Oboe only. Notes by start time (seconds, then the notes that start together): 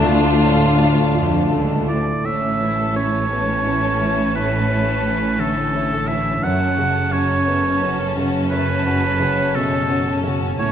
1.89 D5
2.25 E5
2.96 C#5
4.36 B4
5.40 A4
6.08 E5
6.43 F#5
7.13 C#5
8.50 B4
9.55 A4
10.59 C#5